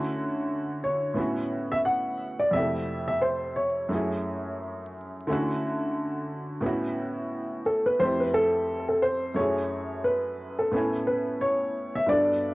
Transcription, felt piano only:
0.00 1.13 D3 medium
0.00 1.14 A3 medium
0.00 1.15 C#4 medium
0.00 1.16 E4 medium
0.00 1.16 F#4 medium
1.14 2.50 A2 medium
1.14 2.50 B3 medium
1.14 2.51 C#4 medium
1.18 2.52 E4 medium
1.18 2.52 F#4 medium
2.51 3.86 F2 medium
2.51 3.88 C3 medium
2.51 2.61 G#3 soft
2.55 3.89 A3 medium
2.55 3.88 E4 medium
2.55 3.89 G4 medium
3.89 5.23 F#2 medium
3.89 5.24 A3 medium
3.89 5.25 C#4 soft
3.93 5.25 E4 medium
3.93 5.26 G#4 medium
5.27 6.61 D3 medium
5.27 6.61 A3 medium
5.27 6.62 C#4 medium
5.31 6.63 E4 medium
5.31 6.64 F#4 medium
6.61 7.96 A2 medium
6.61 7.96 B3 medium
6.61 7.97 C#4 medium
6.65 7.98 E4 medium
6.65 7.99 F#4 medium
7.99 9.33 F2 medium
7.99 9.34 A3 medium
7.99 9.35 C4 medium
7.99 9.35 E4 medium
8.05 9.36 G4 medium
9.34 10.69 F#2 medium
9.34 10.70 A3 medium
9.34 10.70 C#4 soft
9.38 10.71 E4 medium
9.38 10.72 G#4 medium
10.71 12.06 A2 medium
10.71 12.06 B3 medium
10.71 12.07 C#4 medium
10.71 12.08 E4 medium
10.77 12.08 G#5 medium
12.06 12.54 G2 medium
12.06 12.54 B3 soft
12.06 12.54 D4 medium
12.11 12.54 F#4 soft
12.11 12.54 A4 medium

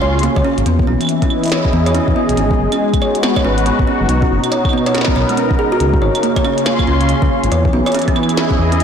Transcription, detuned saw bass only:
0.02 0.29 C#2 medium
0.36 0.42 C#2 medium
0.58 0.63 G#1 loud
0.66 0.82 E2 loud
0.87 0.96 B1 medium
1.73 2.00 E2 medium
2.08 2.13 E2 medium
2.29 2.34 B1 loud
2.37 2.53 G#1 loud
2.59 2.67 F#1 medium
3.44 3.72 G#1 loud
3.79 3.84 G#1 medium
4.01 4.06 F#1 loud
4.09 4.24 B1 loud
4.30 4.39 F#1 medium
5.16 5.24 B1 loud
5.80 5.96 C#2 loud
6.02 6.10 G#1 medium
6.87 7.14 C#2 medium
7.22 7.27 C#2 medium
7.44 7.49 G#1 loud
7.52 7.67 E2 loud
7.73 7.82 B1 medium
8.59 8.84 E2 medium

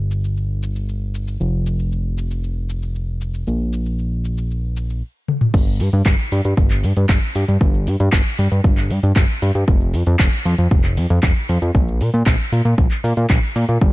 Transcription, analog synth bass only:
0.00 1.38 G1 medium
1.40 3.45 F1 medium
3.47 5.03 A#1 medium
5.54 5.82 G1 loud
5.80 5.89 G2 loud
5.93 6.02 G2 loud
6.06 6.15 G1 medium
6.32 6.41 G2 loud
6.45 6.54 G2 medium
6.57 6.85 G1 medium
6.84 6.93 G2 loud
6.97 7.06 G2 medium
7.09 7.19 G1 medium
7.36 7.45 G2 medium
7.48 7.58 G2 medium
7.61 7.89 G1 loud
7.87 7.96 G2 loud
8.00 8.09 G2 loud
8.13 8.22 G1 medium
8.39 8.48 G2 loud
8.52 8.61 G2 medium
8.64 8.92 G1 medium
8.90 9.00 G2 loud
9.03 9.13 G2 loud
9.16 9.25 G1 loud
9.42 9.51 G2 medium
9.55 9.64 G2 medium
9.68 9.95 F1 loud
9.94 10.03 F2 loud
10.07 10.16 F2 loud
10.20 10.29 F1 medium
10.46 10.55 F2 loud
10.59 10.68 F2 medium
10.71 10.99 F1 medium
10.97 11.07 F2 loud
11.10 11.19 F2 loud
11.23 11.32 F1 loud
11.49 11.58 F2 medium
11.62 11.71 F2 medium
11.75 12.02 A#1 loud
12.01 12.10 A#2 loud
12.14 12.23 A#2 loud
12.26 12.36 A#1 medium
12.52 12.62 A#2 loud
12.65 12.74 A#2 medium
12.78 12.87 A#1 medium
13.04 13.13 A#2 loud
13.17 13.26 A#2 medium
13.30 13.39 A#1 loud
13.56 13.65 A#2 medium
13.69 13.78 A#2 medium
13.82 13.93 G1 loud

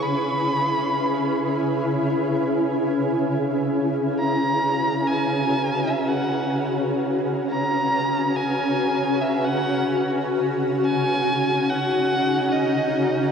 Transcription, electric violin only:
0.02 1.70 B5 loud
4.20 5.09 A#5 loud
5.07 5.89 G#5 medium
5.87 6.09 E5 medium
6.08 6.71 F#5 medium
7.51 8.38 A#5 loud
8.36 9.23 G#5 medium
9.21 9.46 E5 medium
9.44 10.06 F#5 loud
10.85 11.71 G#5 loud
11.69 12.53 F#5 loud
12.52 13.32 D#5 medium

